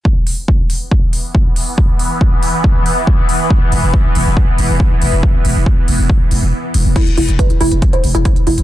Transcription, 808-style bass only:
X:1
M:4/4
L:1/16
Q:1/4=139
K:Clyd
V:1 name="808-style bass" clef=bass
z16 | z16 | z2 E,,, E,,, z2 E,,, E,,, z2 E,,, E,,, z2 E,,, E,,, | z2 E,,, E,,, z2 E,,, E,,, z2 E,,, E,,, z2 E,,, E,,, |
z2 E,,, E,,, z2 E,,, E,,, z2 E,,, E,,, z2 E,,, E,,, |]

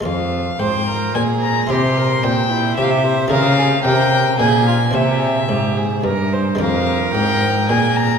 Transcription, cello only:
X:1
M:3/4
L:1/8
Q:1/4=110
K:Fm
V:1 name="Cello" clef=bass
F,,2 A,,2 B,,2 | C,2 B,,2 C,2 | D,2 C,2 B,,2 | C,2 A,,2 G,,2 |
F,,2 A,,2 B,,2 |]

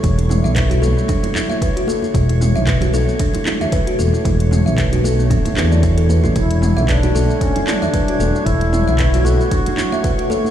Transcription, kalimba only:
X:1
M:4/4
L:1/16
Q:"Swing 16ths" 1/4=114
K:Edor
V:1 name="Kalimba"
E E E e B F A B, D E E e B F A E | E E E e B F A B, D E E e B F A E | E E E e B F A B, D E B d E A B E | E E E e B F A B, D E E e B F A E |
E E E e B F A B, D E E e B F A E |]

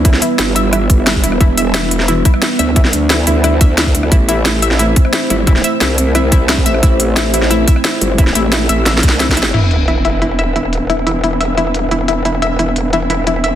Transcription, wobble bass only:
X:1
M:4/4
L:1/8
Q:1/4=177
K:Em
V:1 name="Wobble bass" clef=bass
D,, z G,,,4- G,,, E,,, | E,,,4- E,,, z2 D,,- | D,, D,,2 D,,4- D,, | A,,,4- A,,, z2 G,,,- |
G,,, z C,,4- C,, A,,, | A,,,4- A,,, z2 G,,,- | G,,, A,,,2 A,,,2 C,,3 | E,,,8- |
E,,,8- | E,,,8 |]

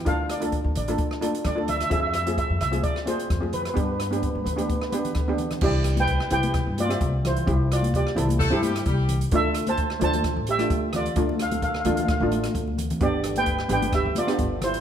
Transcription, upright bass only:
X:1
M:4/4
L:1/16
Q:"Swing 16ths" 1/4=130
K:C
V:1 name="Upright bass" clef=bass
D,,4- D,, D,, A,,,2 z4 D,,4 | F,,4- F,, F,, C,,2 z4 F,,4 | G,,4- G,, G,, D,,2 z4 D,,4 | C,,6 C,,3 G,,3 C,,4 |
C,,6 C,,3 G,,3 C,,4 | D,,6 D,,3 A,,,3 D,,4 | D,,6 D,,3 A,,,3 D,,4 | G,,,6 G,,,3 D,,3 G,,,4 |]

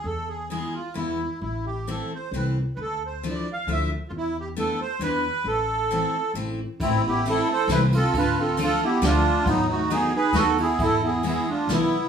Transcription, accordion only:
X:1
M:3/4
L:1/16
Q:1/4=134
K:Am
V:1 name="Accordion"
A2 ^G2 G2 F2 E4 | E2 G2 A2 c2 B2 z3/2 B/2 | A2 c2 d2 f2 e2 z3/2 F/2 | E2 G2 A2 c2 B4 |
A8 z4 | [CE]2 [EG]2 [EA]2 [Ac]2 [EB]2 [FA]2 | [FB]2 [FA]2 [FA]2 [EG]2 [DF]4 | [B,^D]2 [D^F]2 [D^G]2 [GB]2 [FA]2 [EG]2 |
[EA]2 [E^G]2 [EG]2 [DF]2 [B,E]4 |]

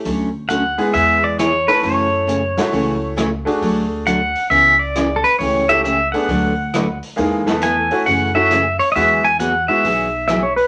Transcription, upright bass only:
X:1
M:4/4
L:1/8
Q:"Swing" 1/4=135
K:Emix
V:1 name="Upright bass" clef=bass
D,,4 E,,4 | F,,4 C,,4 | D,,4 C,,4 | C,,4 D,,4 |
E,,4 F,,4 | E,,4 B,,,4 |]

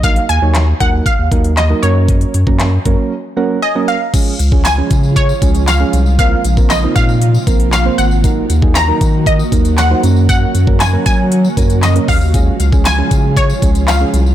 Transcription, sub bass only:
X:1
M:4/4
L:1/16
Q:1/4=117
K:Db
V:1 name="Sub bass" clef=bass
B,,,2 E,, E,,3 E,,2 z E,, E,,4 G,,2- | G,,2 G,, G,,3 G,, z8 z | z2 D,,4 D,4 D,,4 C,,2- | C,,2 B,,,4 B,,4 B,,,4 A,,,2- |
A,,,2 E,,4 E,4 E,,4 G,,2- | G,,2 G,,4 G,4 G,,4 E,,2- | E,,2 D,,4 D,4 D,,4 C,,2 |]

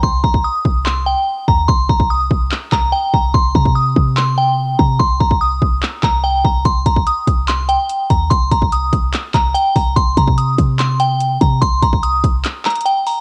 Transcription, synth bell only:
X:1
M:4/4
L:1/8
Q:1/4=145
K:Cm
V:1 name="Synth bell"
c' b e'2 c' g2 b | c' b e'2 z b g b | c' b e'2 c' g2 b | c' b e'2 z b g b |
c' b e'2 c' g2 b | c' b e'2 z b g b | c' b e'2 c' g2 b | c' b e'2 z b g b |]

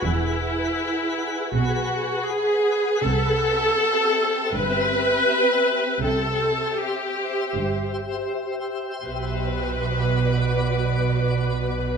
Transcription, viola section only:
X:1
M:4/4
L:1/8
Q:1/4=80
K:Bphr
V:1 name="Viola section"
E4 F2 ^G2 | A4 B4 | A2 G3 z3 | B8 |]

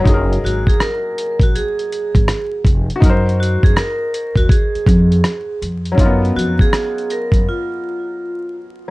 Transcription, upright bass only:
X:1
M:4/4
L:1/16
Q:"Swing 16ths" 1/4=81
K:F#
V:1 name="Upright bass" clef=bass
F,,,2 G,,, z4 A,,, z3 G,,, z2 E,,, z | F,,3 F,, z3 D,, z2 E,,2 z2 E,,2 | F,,2 E,, z4 F,, z8 |]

